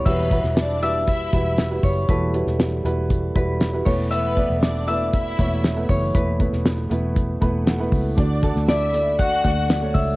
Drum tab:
CC |x---------------|--------------x-|----------------|----------------|
HH |--x-x-x-x-x-x-o-|x-x-x-x-x-x-x---|x-x-x-x-x-x-x-o-|x-x-x-x-x-x-x-o-|
SD |---oo-------o---|---oo-------o---|----o-------o---|---oo-------o---|
BD |o-o-----o-o---o-|o-------o-o---o-|--o-----o-o---o-|o-o-----o-o---o-|

CC |----------------|
HH |x-x-x-x-x-x-x-o-|
SD |---oo-------o---|
BD |o-o-----o-o---o-|